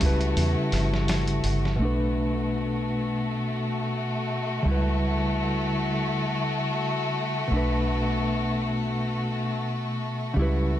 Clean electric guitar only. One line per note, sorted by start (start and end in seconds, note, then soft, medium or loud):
0.00 1.74 C#3 medium
0.00 1.75 G3 medium
0.00 1.77 E4 medium
0.06 1.78 B4 medium
1.76 4.60 B2 medium
1.76 4.61 A3 medium
1.82 4.63 D4 medium
1.82 4.64 B4 medium
4.63 7.46 C#3 medium
4.63 7.47 G3 medium
4.68 7.49 E4 medium
4.68 7.50 B4 medium
7.48 10.31 B2 medium
7.48 10.32 A3 medium
7.53 10.34 D4 medium
7.53 10.36 B4 medium
10.34 10.80 C#3 medium
10.34 10.80 G3 medium
10.39 10.80 E4 medium
10.39 10.80 B4 medium